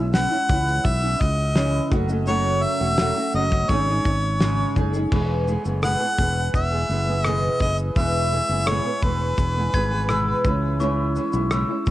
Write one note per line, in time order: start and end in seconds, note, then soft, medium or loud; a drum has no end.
0.00 0.25 B1 medium
0.00 0.13 G#3 soft
0.00 0.13 C#4 soft
0.00 0.14 E4 medium
0.14 0.32 C#3 medium
0.14 0.32 E3 medium
0.14 0.32 G#3 medium
0.14 0.31 C#4 medium
0.14 0.30 E4 medium
0.14 0.87 F#5 loud
0.14 snare loud
0.14 shaker medium
0.31 0.49 G#3 soft
0.31 0.49 C#4 medium
0.31 0.49 E4 medium
0.49 0.79 C#2 medium
0.49 1.03 E3 medium
0.49 1.03 G#3 medium
0.49 1.02 C#4 medium
0.49 1.01 E4 medium
0.49 kick loud
0.49 shaker medium
0.68 shaker medium
0.85 1.14 B1 medium
0.85 1.22 E5 medium
0.85 kick medium
0.85 shaker medium
1.02 1.55 G#3 soft
1.02 1.55 C#4 medium
1.02 1.56 E4 medium
1.21 1.79 C#2 medium
1.21 1.92 D#5 medium
1.21 kick medium
1.21 shaker medium
1.55 1.91 C#3 medium
1.55 1.90 E3 medium
1.55 1.91 G#3 medium
1.55 1.91 C#4 medium
1.55 1.92 E4 loud
1.55 snare medium
1.55 shaker medium
1.91 2.64 F#1 loud
1.91 2.09 F#3 medium
1.91 2.09 A3 medium
1.91 2.08 C#4 medium
1.91 2.07 F#4 medium
1.91 kick loud
1.91 shaker medium
2.08 2.26 F#3 soft
2.08 2.26 A3 soft
2.08 2.27 C#4 soft
2.08 2.27 F#4 medium
2.08 shaker medium
2.27 2.80 F#2 medium
2.27 2.80 C#3 medium
2.27 2.81 F#3 medium
2.27 2.80 A3 medium
2.27 2.80 C#4 medium
2.27 2.79 F#4 medium
2.27 2.64 C#5 loud
2.27 shaker medium
2.63 3.34 E5 loud
2.63 shaker soft
2.80 3.10 E1 medium
2.80 2.98 F#3 soft
2.80 2.98 A3 soft
2.80 2.98 C#4 soft
2.80 2.98 F#4 medium
2.98 3.16 F#2 medium
2.98 3.16 C#3 medium
2.98 3.16 F#3 medium
2.98 3.16 A3 medium
2.98 3.15 C#4 medium
2.98 3.14 F#4 medium
2.98 snare loud
2.98 shaker medium
3.15 3.32 F#3 soft
3.15 3.33 A3 medium
3.15 3.33 C#4 medium
3.15 3.34 F#4 medium
3.33 3.63 F#1 loud
3.33 3.69 F#3 medium
3.33 3.69 A3 medium
3.33 3.68 C#4 medium
3.33 3.70 F#4 medium
3.33 3.72 D#5 medium
3.33 shaker medium
3.52 kick medium
3.69 3.99 G#1 loud
3.69 3.87 G#2 medium
3.69 3.87 C#3 medium
3.69 3.87 G#3 medium
3.69 3.87 C#4 medium
3.69 3.87 D#4 medium
3.69 3.86 G#4 medium
3.69 4.76 C#5 medium
3.69 kick medium
3.69 shaker medium
3.87 4.40 G#3 soft
3.87 4.40 C#4 soft
3.87 4.41 D#4 soft
3.87 4.40 G#4 medium
4.05 4.63 G#1 medium
4.05 kick medium
4.05 shaker medium
4.41 4.76 G#2 medium
4.41 4.76 C#3 medium
4.41 4.74 G#3 medium
4.41 4.75 C#4 medium
4.41 4.75 D#4 medium
4.41 4.76 G#4 medium
4.41 snare loud
4.41 shaker medium
4.75 5.05 F#1 medium
4.75 4.93 G#3 medium
4.75 4.94 C#4 medium
4.75 4.93 D#4 medium
4.75 4.92 G#4 medium
4.75 kick medium
4.75 shaker soft
4.93 5.11 G#3 soft
4.93 5.12 C#4 medium
4.93 5.12 D#4 medium
4.93 5.11 G#4 medium
4.93 shaker medium
5.12 5.55 E1 medium
5.12 5.47 E2 medium
5.12 5.47 B2 medium
5.12 5.46 E3 medium
5.12 5.47 G#3 medium
5.12 5.48 B3 medium
5.12 5.48 G#4 medium
5.12 kick loud
5.12 crash medium
5.47 5.65 E3 medium
5.47 5.65 G#3 medium
5.47 5.65 B3 medium
5.47 5.64 G#4 medium
5.47 shaker soft
5.65 5.94 F#1 medium
5.65 5.82 E3 soft
5.65 5.82 G#3 soft
5.65 5.83 B3 soft
5.65 5.83 G#4 soft
5.65 shaker medium
5.83 6.00 E2 medium
5.83 6.00 B2 medium
5.83 6.01 E3 medium
5.83 6.01 G#3 medium
5.83 6.00 B3 medium
5.83 5.99 G#4 medium
5.83 6.51 F#5 loud
5.83 cross-stick loud
5.83 shaker medium
6.00 6.17 E3 soft
6.00 6.18 G#3 soft
6.00 6.18 B3 soft
6.00 6.18 G#4 soft
6.18 6.48 E1 medium
6.18 6.71 E3 medium
6.18 6.72 G#3 medium
6.18 6.71 B3 medium
6.18 6.70 G#4 medium
6.18 kick medium
6.18 shaker soft
6.54 6.83 E1 medium
6.54 7.24 E5 medium
6.54 kick medium
6.54 shaker medium
6.71 6.88 E3 soft
6.71 6.89 G#3 soft
6.71 6.90 B3 medium
6.71 6.89 G#4 medium
6.89 7.48 F#1 medium
6.89 7.07 E3 medium
6.89 7.08 G#3 medium
6.89 7.07 B3 medium
6.89 7.06 G#4 medium
6.89 shaker medium
7.07 7.24 E3 soft
7.07 7.25 G#3 soft
7.07 7.25 B3 medium
7.07 7.25 G#4 soft
7.24 7.60 E2 medium
7.24 7.60 B2 medium
7.24 7.59 E3 medium
7.24 7.60 G#3 medium
7.24 7.60 B3 medium
7.24 7.61 G#4 medium
7.24 7.57 D#5 medium
7.24 cross-stick loud
7.24 shaker medium
7.60 7.90 F#1 medium
7.60 7.96 E3 medium
7.60 7.96 G#3 medium
7.60 7.96 B3 medium
7.60 7.96 G#4 medium
7.60 7.78 D#5 medium
7.60 kick medium
7.60 shaker medium
7.78 shaker medium
7.96 8.40 E1 medium
7.96 8.32 E2 medium
7.96 8.32 B2 medium
7.96 8.30 E3 medium
7.96 8.31 G#3 medium
7.96 8.31 B3 medium
7.96 8.32 G#4 medium
7.96 8.70 E5 loud
7.96 kick loud
7.96 shaker medium
8.31 8.49 E3 medium
8.31 8.49 G#3 medium
8.31 8.49 B3 medium
8.31 8.48 G#4 soft
8.31 shaker soft
8.49 8.78 F#1 medium
8.49 8.67 E3 soft
8.49 8.67 G#3 soft
8.49 8.67 B3 medium
8.49 8.67 G#4 medium
8.67 8.85 E2 medium
8.67 8.85 B2 medium
8.67 8.85 E3 medium
8.67 8.85 G#3 medium
8.67 8.85 B3 medium
8.67 8.84 G#4 medium
8.67 9.05 C#5 medium
8.67 cross-stick loud
8.67 shaker medium
8.85 9.01 E3 soft
8.85 9.02 G#3 soft
8.85 9.03 B3 medium
8.85 9.03 G#4 soft
9.02 9.32 E1 medium
9.02 9.56 E3 medium
9.02 9.56 G#3 medium
9.02 9.55 B3 medium
9.02 9.54 G#4 medium
9.02 10.45 B4 medium
9.02 kick medium
9.02 shaker soft
9.38 9.67 E1 medium
9.38 kick medium
9.38 shaker medium
9.55 9.72 E3 soft
9.55 9.73 G#3 soft
9.55 9.73 B3 soft
9.55 9.73 G#4 soft
9.73 10.32 G#1 medium
9.73 9.91 E3 medium
9.73 9.91 G#3 medium
9.73 9.90 B3 medium
9.73 9.90 G#4 medium
9.73 10.10 G#6 loud
9.73 kick medium
9.73 shaker medium
9.91 10.08 E3 soft
9.91 10.08 G#3 soft
9.91 10.09 B3 soft
9.91 10.09 G#4 medium
10.09 10.45 E2 medium
10.09 10.45 B2 loud
10.09 10.43 E3 loud
10.09 10.44 G#3 loud
10.09 10.45 B3 loud
10.09 10.45 G#4 medium
10.09 10.82 E6 medium
10.09 cross-stick loud
10.09 shaker medium
10.44 11.18 C#2 medium
10.44 10.79 E3 medium
10.44 10.79 G#3 medium
10.44 10.79 C#4 medium
10.44 10.80 E4 medium
10.44 kick loud
10.44 cross-stick soft
10.44 shaker soft
10.79 11.15 C#3 medium
10.79 11.14 E3 medium
10.79 11.15 G#3 medium
10.79 11.15 C#4 loud
10.79 11.16 E4 medium
10.79 11.53 C#6 medium
10.79 shaker medium
11.15 11.33 E3 medium
11.15 11.34 G#3 medium
11.15 11.33 C#4 medium
11.15 11.32 E4 medium
11.15 shaker soft
11.33 11.63 B1 medium
11.33 11.51 G#3 medium
11.33 11.51 C#4 medium
11.33 11.51 E4 medium
11.33 shaker medium
11.51 11.69 C#3 medium
11.51 11.69 E3 medium
11.51 11.69 G#3 medium
11.51 11.69 C#4 medium
11.51 11.67 E4 medium
11.51 11.91 E6 medium
11.51 cross-stick loud
11.51 shaker medium
11.69 11.86 G#3 soft
11.69 11.87 C#4 medium
11.69 11.87 E4 medium
11.86 11.91 C#2 medium
11.86 11.91 E3 medium
11.86 11.91 G#3 medium
11.86 kick medium
11.86 shaker soft